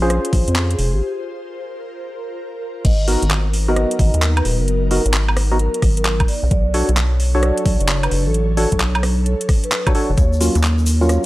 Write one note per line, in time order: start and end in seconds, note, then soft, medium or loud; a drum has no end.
0.00 0.19 A#1 medium
0.00 1.02 C#4 medium
0.00 2.81 F4 medium
0.00 1.02 F4 medium
0.00 1.00 G#4 medium
0.00 1.02 G#4 medium
0.00 2.81 C5 medium
0.00 0.21 C5 medium
0.00 1.02 C5 loud
0.10 cross-stick medium
0.10 closed hi-hat medium
0.25 closed hi-hat medium
0.33 0.44 A#1 medium
0.33 0.54 C5 medium
0.33 kick loud
0.33 open hi-hat loud
0.48 0.76 F2 medium
0.48 closed hi-hat medium
0.56 clap loud
0.71 0.81 G#4 medium
0.71 closed hi-hat medium
0.79 0.95 F1 medium
0.79 open hi-hat medium
0.93 1.02 G#1 loud
0.93 1.01 G4 loud
1.02 2.83 A#4 medium
2.85 3.17 G#1 loud
2.85 11.26 F#3 medium
2.85 6.25 B3 medium
2.85 6.25 D#4 medium
2.85 6.25 A#4 medium
2.85 3.05 D#5 loud
2.85 kick loud
2.85 closed hi-hat medium
2.85 crash loud
3.08 3.24 B3 medium
3.08 3.24 D#4 medium
3.08 3.24 F#4 medium
3.08 3.24 A#4 loud
3.08 open hi-hat loud
3.22 3.85 G#1 medium
3.22 closed hi-hat medium
3.31 clap loud
3.53 open hi-hat medium
3.68 4.89 B3 medium
3.68 4.89 D#4 medium
3.68 4.89 F#4 medium
3.68 4.89 A#4 loud
3.68 3.87 D#5 medium
3.76 cross-stick medium
3.76 closed hi-hat medium
3.91 closed hi-hat medium
3.99 4.11 G#1 loud
3.99 4.20 D#5 medium
3.99 kick loud
3.99 open hi-hat loud
4.14 4.42 D#2 medium
4.14 closed hi-hat medium
4.22 clap loud
4.37 4.47 B4 medium
4.37 closed hi-hat medium
4.37 high woodblock medium
4.45 4.61 D#1 medium
4.45 open hi-hat loud
4.60 5.00 F#1 medium
4.60 4.79 A#4 loud
4.68 closed hi-hat medium
4.91 5.02 B3 medium
4.91 5.02 D#4 medium
4.91 5.02 F#4 medium
4.91 5.12 A#4 medium
4.91 5.02 A#4 medium
4.91 open hi-hat loud
5.06 5.69 G#1 medium
5.06 closed hi-hat medium
5.14 clap loud
5.29 high woodblock medium
5.37 cross-stick medium
5.37 open hi-hat medium
5.51 5.58 B3 medium
5.51 5.58 D#4 medium
5.51 5.58 F#4 medium
5.51 5.58 A#4 medium
5.59 5.80 A#4 medium
5.59 closed hi-hat medium
5.74 closed hi-hat medium
5.82 6.25 G#1 medium
5.82 kick loud
5.82 cross-stick medium
5.82 open hi-hat loud
5.97 6.16 A#4 medium
5.97 closed hi-hat medium
6.05 clap loud
6.20 kick loud
6.20 closed hi-hat medium
6.20 high woodblock medium
6.28 10.14 D4 medium
6.28 10.14 A4 medium
6.28 10.14 C#5 medium
6.28 6.44 D5 medium
6.28 open hi-hat loud
6.43 6.49 B1 medium
6.51 6.83 B1 loud
6.51 6.72 D5 loud
6.51 kick loud
6.51 closed hi-hat medium
6.74 6.91 D4 medium
6.74 6.91 F#4 medium
6.74 6.91 A4 medium
6.74 6.91 C#5 loud
6.74 open hi-hat loud
6.89 7.52 B1 loud
6.89 closed hi-hat medium
6.97 clap loud
7.20 open hi-hat medium
7.35 8.55 D4 medium
7.35 8.55 F#4 medium
7.35 8.55 A4 medium
7.35 8.55 C#5 loud
7.35 7.53 D5 medium
7.43 cross-stick medium
7.43 closed hi-hat medium
7.58 closed hi-hat medium
7.66 7.77 B1 medium
7.66 7.86 D5 medium
7.66 kick loud
7.66 open hi-hat loud
7.80 8.08 F#1 medium
7.80 closed hi-hat medium
7.89 clap loud
8.03 8.14 B4 medium
8.03 closed hi-hat medium
8.03 high woodblock medium
8.11 8.28 F#1 medium
8.11 open hi-hat medium
8.26 8.66 A1 medium
8.26 8.45 A4 loud
8.34 closed hi-hat medium
8.57 8.69 D4 medium
8.57 8.69 F#4 medium
8.57 8.78 A4 medium
8.57 8.69 A4 medium
8.57 8.69 C#5 medium
8.57 open hi-hat loud
8.72 9.35 B1 loud
8.72 kick medium
8.72 closed hi-hat medium
8.80 clap loud
8.95 closed hi-hat soft
8.95 high woodblock medium
9.03 cross-stick medium
9.03 open hi-hat medium
9.26 9.47 A4 medium
9.26 closed hi-hat medium
9.41 closed hi-hat medium
9.49 kick loud
9.49 cross-stick medium
9.49 open hi-hat loud
9.64 9.83 B4 medium
9.64 closed hi-hat medium
9.72 clap loud
9.87 9.93 D4 medium
9.87 9.93 F#4 medium
9.87 9.93 A4 medium
9.87 9.93 C#5 loud
9.87 kick loud
9.87 closed hi-hat medium
9.87 high woodblock medium
9.95 10.11 D4 medium
9.95 10.11 F#4 medium
9.95 10.11 A4 medium
9.95 10.11 C#5 medium
9.95 10.11 C#5 loud
9.95 open hi-hat medium
10.10 10.16 F#1 medium
10.17 10.50 D#2 loud
10.17 11.26 C#4 medium
10.17 11.26 F4 medium
10.17 11.26 A#4 medium
10.17 10.38 C#5 loud
10.17 kick loud
10.17 closed hi-hat medium
10.17 shaker medium
10.33 shaker soft
10.41 10.57 F#3 medium
10.41 10.57 A#3 medium
10.41 10.57 C#4 medium
10.41 10.57 F4 loud
10.41 open hi-hat loud
10.41 shaker loud
10.55 11.18 D#2 loud
10.55 closed hi-hat medium
10.55 shaker soft
10.64 clap loud
10.64 shaker medium
10.78 shaker soft
10.86 open hi-hat medium
10.86 shaker loud
11.01 11.26 F#3 medium
11.01 11.26 A#3 medium
11.01 11.26 C#4 medium
11.01 11.26 F4 loud
11.01 11.20 C#5 medium
11.01 shaker soft
11.09 cross-stick medium
11.09 closed hi-hat medium
11.09 shaker medium